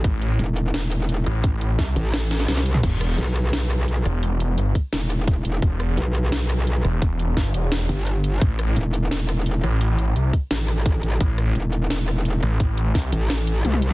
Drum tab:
CC |----------------|----------------|x---------------|----------------|
HH |x-x-x-x-x-x-x-x-|x-x-x-x-x-x-x-x-|x-x-x-x-x-x-x-x-|x-x-x-x-x-x-x-x-|
SD |--------o-------|----o---o-oooo--|--r-----o-r---r-|--------o-r-----|
T1 |----------------|----------------|----------------|----------------|
T2 |----------------|---------------o|----------------|----------------|
BD |o---------------|o---o-----------|o---------------|------o-----o---|

CC |----------------|----------------|----------------|----------------|
HH |x-x-x-x-x-x-x-x-|x-x-x-x-x-x-x-x-|x-x-x-x-x-x-x-x-|x-x-x-x-x-x-x-x-|
SD |--r-----o-r---r-|----o---o-------|--r-----o-r---r-|--------o-r-----|
T1 |----------------|----------------|----------------|----------------|
T2 |----------------|----------------|----------------|----------------|
BD |o---------------|o---o-----------|o---------------|------o-----o---|

CC |----------------|----------------|
HH |x-x-x-x-x-x-x-x-|x-x-x-x-x-x-x-x-|
SD |--r-----o-r---r-|----o---o-------|
T1 |----------------|------------oo--|
T2 |----------------|----------------|
BD |o---------------|o---o-----------|